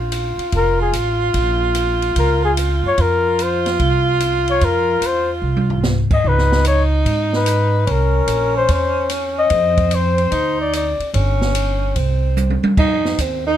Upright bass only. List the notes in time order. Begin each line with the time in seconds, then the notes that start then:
Already playing: A#1
0.37 muted upright bass stroke
0.53 F1
0.92 A1
1.34 A#1
2.16 C#2
2.83 F#2
2.98 F2
3.79 C2
4.61 F2
5.01 E2
5.42 C2
6.10 muted upright bass stroke
6.24 C#2
7.05 G#2
7.87 C2
8.26 A#1
8.68 E2
9.50 F2
10.32 D2
10.99 muted upright bass stroke
11.13 G1
11.95 C2
12.63 muted upright bass stroke
12.77 F2
13.18 D#2